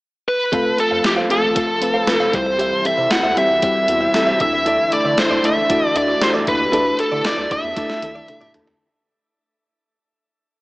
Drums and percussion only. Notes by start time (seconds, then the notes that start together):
0.53 kick, closed hi-hat
0.78 closed hi-hat
1.04 snare, closed hi-hat
1.30 closed hi-hat
1.56 kick, closed hi-hat
1.82 closed hi-hat
2.07 snare, closed hi-hat
2.33 kick, closed hi-hat
2.59 closed hi-hat
2.85 closed hi-hat
3.11 snare, closed hi-hat
3.37 closed hi-hat
3.62 kick, closed hi-hat
3.88 closed hi-hat
4.14 snare, closed hi-hat
4.40 kick, closed hi-hat
4.66 closed hi-hat
4.92 closed hi-hat
5.18 snare, closed hi-hat
5.44 closed hi-hat
5.70 kick, closed hi-hat
5.96 closed hi-hat
6.21 snare, closed hi-hat
6.47 kick, closed hi-hat
6.73 closed hi-hat
6.99 closed hi-hat
7.25 snare, closed hi-hat
7.51 kick, closed hi-hat
7.77 kick, snare, closed hi-hat
7.90 snare
8.02 closed hi-hat, high tom
8.16 high tom
8.28 closed hi-hat, mid tom
8.41 mid tom
8.54 closed hi-hat, floor tom
8.67 floor tom